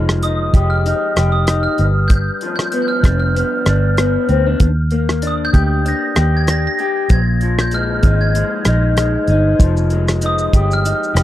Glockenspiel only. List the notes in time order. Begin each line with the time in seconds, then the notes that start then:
0.23 D#6
0.70 F6
1.32 D#6
1.63 F6
2.08 G6
2.56 G6
2.82 G6
2.88 F6
3.20 F6
5.27 D#6
5.45 G6
5.88 A#6
6.37 G#6
6.50 A#6
6.67 A#6
7.12 G#6
7.61 G6
7.74 F6
8.21 G#6
10.26 D#6
10.73 F6